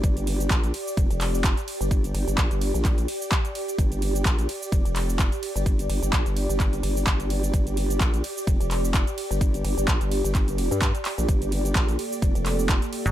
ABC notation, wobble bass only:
X:1
M:4/4
L:1/16
Q:"Swing 16ths" 1/4=128
K:Gm
V:1 name="Wobble bass" clef=bass
G,,,4 B,,,2 z2 F,,, F,,,4 z2 G,,,- | G,,,2 G,,, G,,, B,,, G,,,2 B,,,3 z6 | G,,,4 B,,,2 z2 F,,, F,,,4 z2 G,,,- | G,,,2 G,,, G,,, B,,, G,,,2 G,,,3 G,,,2 G,,,4 |
G,,,4 B,,,2 z2 F,,, F,,,4 z2 G,,,- | G,,,2 G,,, G,,, B,,, G,,,2 G,,,4 G,,2 z2 B,,, | G,,,4 B,,,2 z2 F,,, F,,,4 z3 |]